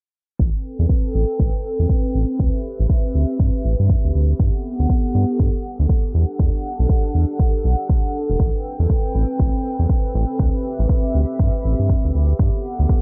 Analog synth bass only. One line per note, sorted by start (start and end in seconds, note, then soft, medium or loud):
0.40 0.50 A1 medium
0.79 0.87 E2 loud
1.14 1.25 A1 medium
1.40 1.50 A1 medium
1.79 1.87 E2 medium
2.15 2.25 A1 medium
2.39 2.50 D2 loud
2.79 2.87 A1 loud
3.15 3.25 D2 medium
3.39 3.50 G2 loud
3.65 3.75 A1 medium
3.79 3.96 G2 loud
4.04 4.12 D2 medium
4.15 4.34 D2 medium
4.40 4.50 G2 medium
4.79 4.87 D2 loud
5.15 5.25 G2 medium
5.40 5.50 G2 medium
5.79 5.87 D2 medium
6.15 6.25 E2 medium
6.40 6.50 E2 loud
6.79 6.87 B1 loud
7.14 7.25 E2 medium
7.64 7.75 B1 loud
8.29 8.37 E1 medium
8.39 8.50 A1 loud
8.79 8.87 E2 loud
9.14 9.25 A1 medium
9.39 9.50 A1 medium
9.79 9.87 E2 medium
10.15 10.25 A1 medium
10.39 10.50 D2 medium
10.79 10.87 A1 loud
11.15 11.25 D2 medium
11.39 11.50 G2 medium
11.65 11.75 A1 medium
11.79 11.96 G2 medium
12.04 12.12 D2 medium
12.15 12.34 D2 medium
12.39 12.50 G2 loud
12.79 12.87 D2 loud